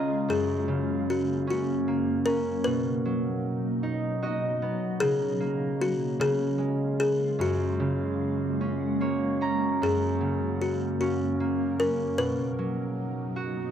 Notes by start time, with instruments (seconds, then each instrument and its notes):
Already playing: harp C#3 G#3 C#4 D#4 F4 D#5 A#5, ambient pad C#3 G#3 F4
0.26 ambient pad F#2 A#3, harp F#2
0.30 kalimba G#4
0.68 harp C#3
1.10 kalimba F#4
1.47 harp C#4, kalimba F#4
1.88 harp A#3
2.26 harp C#4, kalimba A#4
2.64 ambient pad B2 F#3 D#4, harp B2, kalimba B4
3.05 harp F#3
3.83 harp D#4
4.22 harp F#4 D#5
4.62 harp B3
4.99 ambient pad C#3 A#3, harp C#3, kalimba G#4
5.40 harp A#3
5.81 kalimba F#4
6.17 harp C#3, ambient pad G#3 F4, kalimba G#4
6.58 harp G#3
7.00 kalimba G#4
7.38 harp F#2, ambient pad A#3 F#4, kalimba F#4
7.80 harp C#3
8.61 harp C#4
9.01 harp A#3 C#5
9.41 harp C#4 A#5
9.80 ambient pad F#2 C#3 A#3, harp F#2, kalimba G#4
10.21 harp C#3
10.62 kalimba F#4
11.01 harp C#4, kalimba F#4
11.40 harp A#3
11.79 harp C#4, kalimba A#4
12.17 ambient pad B2 F#3 D#4, harp B2, kalimba B4
12.59 harp F#3
13.36 harp F#4